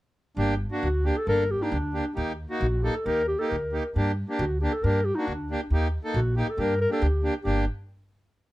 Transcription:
0.37 0.64 G1 medium
0.37 0.54 A#3 medium
0.37 0.54 D4 medium
0.37 0.55 G4 medium
0.71 0.88 A#3 medium
0.71 0.88 D4 soft
0.71 0.88 F#4 medium
0.83 1.09 D2 medium
0.83 1.08 F#4 medium
1.04 1.16 A#3 medium
1.04 1.16 D4 medium
1.04 1.16 G4 medium
1.04 1.19 G4 medium
1.17 1.28 A4 medium
1.27 1.54 G1 medium
1.27 1.44 A#3 medium
1.27 1.44 D4 medium
1.27 1.44 A4 medium
1.27 1.53 A#4 loud
1.51 1.64 G4 medium
1.60 1.77 A#3 medium
1.60 1.77 D4 medium
1.60 1.73 D#4 medium
1.60 1.77 G4 medium
1.72 1.98 D2 medium
1.72 2.15 D4 medium
1.93 2.05 A#3 medium
1.93 2.05 D4 medium
1.93 2.05 G4 medium
2.15 2.43 D#2 medium
2.15 2.32 A#3 medium
2.15 2.32 D#4 medium
2.15 2.33 G4 medium
2.50 2.66 A#3 medium
2.50 2.67 D#4 medium
2.50 2.67 F#4 medium
2.61 2.87 A#1 medium
2.61 2.84 F#4 medium
2.83 2.94 A#3 medium
2.83 2.95 D#4 medium
2.83 2.96 G4 medium
2.83 2.95 A4 medium
2.94 3.07 A4 medium
3.05 3.32 D#2 medium
3.05 3.22 A#3 medium
3.05 3.23 D#4 medium
3.05 3.22 G4 medium
3.05 3.27 A#4 loud
3.28 3.40 G4 medium
3.39 3.56 A#3 medium
3.39 3.56 D#4 soft
3.39 3.56 G4 medium
3.39 3.51 A4 medium
3.49 3.77 D2 medium
3.49 3.94 A#4 medium
3.72 3.83 A#3 medium
3.72 3.84 D#4 medium
3.72 3.83 G4 medium
3.95 4.22 G2 medium
3.95 4.11 A#3 medium
3.95 4.12 D4 medium
3.95 4.12 G4 medium
4.28 4.44 A#3 medium
4.28 4.45 D4 soft
4.28 4.45 G4 medium
4.39 4.65 D2 medium
4.39 4.59 F#4 medium
4.60 4.72 A#3 medium
4.60 4.72 D4 medium
4.60 4.74 G4 medium
4.60 4.72 G4 medium
4.72 4.85 A4 medium
4.83 5.10 G2 medium
4.83 5.00 A#3 medium
4.83 5.00 D4 medium
4.83 5.00 G4 medium
4.83 5.06 A#4 medium
5.05 5.17 G4 medium
5.15 5.33 A#3 medium
5.15 5.33 D4 medium
5.15 5.29 D#4 medium
5.15 5.33 F#4 medium
5.28 5.53 D2 medium
5.28 5.71 D4 medium
5.50 5.60 A#3 medium
5.50 5.60 D4 medium
5.50 5.61 G4 medium
5.70 5.97 D#2 medium
5.70 5.87 A#3 medium
5.70 5.88 D#4 medium
5.70 5.88 G4 medium
6.04 6.20 A#3 medium
6.04 6.20 D#4 medium
6.04 6.20 A4 medium
6.14 6.40 A#1 medium
6.14 6.35 F#4 medium
6.36 6.47 A#3 medium
6.36 6.47 D#4 medium
6.36 6.47 G4 medium
6.36 6.51 G4 medium
6.50 6.62 A4 medium
6.57 6.84 G2 medium
6.57 6.74 A#3 medium
6.57 6.74 D4 soft
6.57 6.74 G4 medium
6.57 6.80 A#4 medium
6.81 6.90 A#4 loud
6.90 7.06 A#3 medium
6.90 7.07 D4 medium
6.90 7.07 G4 medium
6.90 7.04 A4 medium
7.02 7.28 D2 medium
7.02 7.35 G4 medium
7.23 7.34 A#3 medium
7.23 7.34 D4 medium
7.23 7.34 G4 medium
7.42 7.65 G1 medium
7.42 7.65 A#3 medium
7.42 7.65 D4 medium
7.42 7.64 G4 medium
7.42 7.65 G4 medium

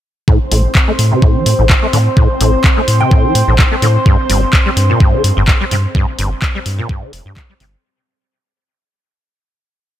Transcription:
0.28 0.38 A2 loud
0.28 7.85 C4 medium
0.28 7.85 C5 medium
0.28 kick loud
0.51 0.67 A1 loud
0.51 0.62 A2 medium
0.51 open hi-hat loud
0.75 kick loud
0.75 clap loud
0.88 0.91 A3 medium
0.99 1.14 A2 medium
0.99 open hi-hat medium
1.12 1.21 C3 medium
1.22 1.37 A2 medium
1.22 kick loud
1.35 1.44 E3 loud
1.46 1.54 A2 loud
1.46 open hi-hat loud
1.59 1.73 A1 loud
1.59 1.65 A2 medium
1.70 1.74 A2 medium
1.70 kick loud
1.70 clap loud
1.82 1.86 A3 medium
1.93 2.09 A2 loud
1.93 1.98 D3 medium
1.93 open hi-hat medium
2.17 2.27 A2 loud
2.17 kick loud
2.40 2.56 A1 loud
2.40 2.51 A2 medium
2.40 open hi-hat loud
2.64 kick loud
2.64 clap loud
2.77 2.81 A3 medium
2.88 3.03 A2 medium
2.88 open hi-hat loud
3.00 3.10 C3 medium
3.00 3.35 G5 medium
3.11 3.26 A2 medium
3.11 kick loud
3.24 3.33 E3 loud
3.35 3.43 A2 medium
3.35 open hi-hat loud
3.48 3.62 A1 loud
3.48 3.54 A2 medium
3.59 3.63 A2 medium
3.59 kick loud
3.59 clap loud
3.71 3.75 A3 medium
3.82 3.98 A2 loud
3.82 3.87 D3 medium
3.82 open hi-hat medium
4.06 4.16 G2 loud
4.06 kick loud
4.29 4.45 G1 loud
4.29 4.40 G2 medium
4.29 open hi-hat loud
4.53 kick loud
4.53 clap loud
4.66 4.69 G3 medium
4.77 4.92 G2 loud
4.77 open hi-hat loud
4.90 4.99 A#2 medium
5.00 5.15 G2 medium
5.00 kick loud
5.13 5.22 D3 loud
5.24 5.32 G2 medium
5.24 open hi-hat loud
5.37 5.51 G1 loud
5.37 5.43 G2 medium
5.48 5.52 G2 medium
5.48 kick loud
5.48 clap loud
5.61 5.64 G3 medium
5.71 5.87 G2 loud
5.71 5.76 C3 medium
5.71 open hi-hat medium
5.95 6.05 G2 loud
5.95 kick loud
6.18 6.34 G1 loud
6.18 6.29 G2 medium
6.18 open hi-hat loud
6.42 kick loud
6.42 clap loud
6.55 6.59 G3 medium
6.66 6.81 G2 loud
6.66 open hi-hat loud
6.79 6.88 A#2 medium
6.89 7.04 G2 medium
6.89 kick loud
7.02 7.11 D3 loud
7.13 7.21 F1 medium
7.13 open hi-hat loud
7.25 7.40 G2 loud
7.25 7.32 G2 medium
7.37 7.41 G2 medium
7.37 kick loud
7.37 clap loud
7.49 7.53 G3 medium
7.60 7.75 G1 loud
7.60 7.65 C3 medium
7.60 open hi-hat medium

